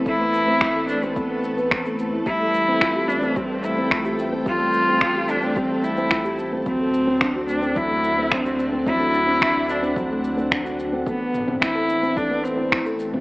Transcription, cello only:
\new Staff \with { instrumentName = "Cello" } { \time 4/4 \key d \dorian \tempo 4 = 109 e'4. d'16 c'16 b4. r8 | e'4. d'8 c'8 e'4 r8 | f'4. d'8 c'8 e'4 r8 | c'4. d'8 e'4 c'8. r16 |
e'4. d'8 c'4. r8 | b4 e'4 d'8 c'4 r8 | }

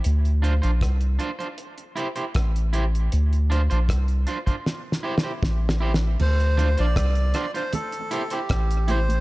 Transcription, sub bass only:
\new Staff \with { instrumentName = "Sub bass" } { \clef bass \time 4/4 \key d \minor \tempo 4 = 78 d,8. bes,,16 c,8 r4. a,,4 | d,8. bes,,16 c,8 r4. a,,4 | d,8. bes,,16 c,8 r4. a,,4 | }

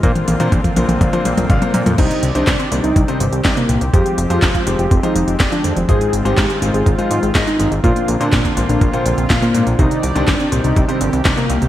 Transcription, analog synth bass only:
\new Staff \with { instrumentName = "Analog synth bass" } { \clef bass \time 4/4 \key c \minor \tempo 4 = 123 bes,16 r16 bes,,16 bes,16 bes,,16 r16 bes,,16 bes,,16 bes,,16 r16 bes,,16 bes,,16 aes,,16 r16 bes,16 f,16 | c,16 r16 c,16 c,16 g,,16 r16 c,16 c,16 c,16 r16 g,,16 c,16 c,16 r16 c,16 c,16 | f,16 r16 f,,16 f,16 f,,16 r16 f,,16 f,,16 f,,16 r16 f,,16 f,,16 f,,16 r16 f,16 f,,16 | aes,,16 r16 aes,,16 aes,,16 aes,16 r16 aes,,16 aes,,16 aes,,16 r16 aes,16 aes,,16 aes,,16 r16 aes,,16 aes,,16 |
bes,16 r16 bes,,16 bes,16 bes,,16 r16 bes,,16 bes,,16 bes,,16 r16 bes,,16 bes,,16 bes,,16 r16 bes,16 bes,,16 | c,16 r16 c,16 c,16 g,,16 r16 c,16 c,16 c,16 r16 g,,16 c,16 c,16 r16 c,16 c,16 | }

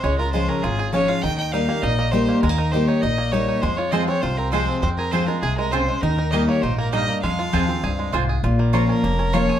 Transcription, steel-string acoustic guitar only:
\new Staff \with { instrumentName = "Steel-string acoustic guitar" } { \time 4/4 \key f \minor \tempo 4 = 200 << { r4 <f aes des' f'>4 r4 <f aes des' f'>4 | r4 <g bes ees' g'>8 <ees' g'>8 r4 <g bes ees' g'>4 | r4 <g bes ees' g'>4 r4 <g bes ees' g'>4 | r4 <f aes c' f'>8 <c' f'>8 r4 <f aes c' f'>4 |
r4 <f aes c' f'>8 <c' f'>8 r2 | r4 <g bes ees' g'>4 r2 | r4 <f aes c' f'>8 <c' f'>8 r2 | r4 <f bes des' f'>4 r4 <f bes des' f'>4 | } \\ { des2 aes,2 | ees2 bes,2 | ees2 bes,2 | f,2 c2 |
f,2 c4 des4 | ees2 aes,4 g,4 | f,2 g,4 aes,4 | bes,2 f,2 | } >> }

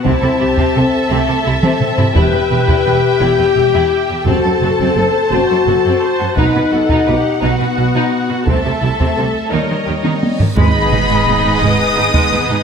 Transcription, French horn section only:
\new Staff \with { instrumentName = "French horn section" } { \time 6/8 \key e \minor \tempo 4. = 57 c'4. a8 r8 c'8 | g'2. | fis'4 a'8 fis'4. | dis'4. b4. |
a4. g4. | \key gis \minor <gis dis'>2. | }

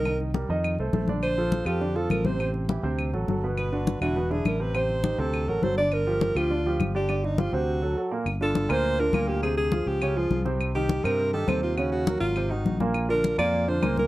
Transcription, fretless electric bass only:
\new Staff \with { instrumentName = "Fretless electric bass" } { \clef bass \time 4/4 \key g \minor \tempo 4 = 205 c,4. f,4 c,8 bes,,4~ | bes,,4. f,4. a,,4~ | a,,4. d,4 a,,8 g,,4~ | g,,4. e,,4. a,,4~ |
a,,4. d,4 a,,8 g,,4~ | g,,4. d,4. g,,4~ | g,,4. d,4. r4 | g,,4. d,4. d,4~ |
d,4. cis,4. c,4~ | c,4. g,4. ees,4~ | ees,4. aes,,4. bes,,4~ | bes,,4. f,4. cis,4 | }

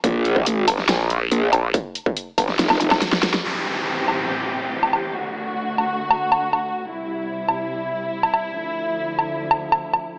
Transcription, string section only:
\new Staff \with { instrumentName = "String section" } { \clef bass \time 4/4 \key a \phrygian \tempo 4 = 141 << { r1 | r1 | g'1 | fis'1 |
e'1~ | e'1 | } \\ { r1 | r1 | <a, e c'>1 | <d, d a>1 |
<c, c g>1 | <d, d f>1 | } >> }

